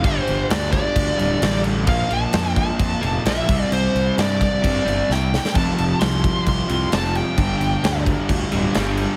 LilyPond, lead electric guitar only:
\new Staff \with { instrumentName = "Lead electric guitar" } { \time 4/4 \key g \dorian \tempo 4 = 131 c''4 d''8 d''2 r8 | f''8 a''4 a''4. e''4 | c''4 d''8 d''4. g''4 | a''4 c'''4 c'''4 a''8 g''8~ |
g''4. r2 r8 | }